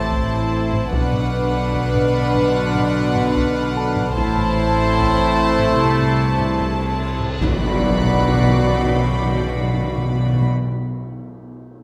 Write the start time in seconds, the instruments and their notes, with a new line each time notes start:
Already playing: double bass section A1, sub bass A1, trombone section A2 A3, cello section A2, french horn section C4 E4, viola section E4, grand piano G4, violin section C5 A5 D6 A6
0.11 taiko
0.73 taiko low-mid
0.91 sub bass B1, double bass section B1, timpani B2, trombone section B2 D3, cello section B2, french horn section B3 D4, viola section D4, violin section B4 F#5 B5 F6, taiko
1.13 taiko low-mid
1.74 taiko
1.94 taiko low-mid
2.35 taiko low-mid
2.75 taiko low-mid
3.16 taiko low-mid
3.36 taiko
3.76 grand piano A4 A5
3.97 taiko low-mid
4.17 double bass section A1, sub bass A1, trombone section A2 A3, cello section A2, french horn section C4 E4, viola section E4, violin section C5 A5, taiko
4.37 taiko low-mid
4.98 taiko
5.19 taiko low-mid
5.59 taiko low-mid
5.79 double bass section C2, sub bass C2, trombone section G2, cello section C3
5.99 taiko low-mid
6.39 taiko low-mid
6.60 taiko
7.21 taiko low-mid
7.41 sub bass B1, double bass section B1, trombone section F#2 F#3, timpani B2, cello section B2, french horn section B3 D4, viola section F#4, violin section D5 B5 D6 F#6, taiko, tam-tam, impact
7.48 timpani B2
7.55 timpani B2
7.62 timpani B2
7.69 timpani B2
7.76 timpani B2
7.83 timpani B2
7.90 timpani B2
7.97 timpani B2
8.04 timpani B2
8.12 timpani B2
8.19 timpani B2
8.27 timpani B2
8.34 timpani B2
8.41 timpani B2
8.48 timpani B2
8.55 timpani B2
8.62 timpani B2
8.69 timpani B2
8.76 timpani B2
8.84 timpani B2
8.90 timpani B2, violin section G6
8.98 timpani B2
9.05 timpani B2
9.12 timpani B2
9.19 timpani B2
9.26 timpani B2
9.33 timpani B2
9.41 timpani B2
9.48 timpani B2
9.56 timpani B2
9.63 timpani B2
9.69 timpani B2
9.76 timpani B2
9.83 timpani B2
9.90 timpani B2
9.98 timpani B2
10.05 timpani B2
10.12 timpani B2
10.19 timpani B2
10.27 timpani B2
10.33 timpani B2
10.40 timpani B2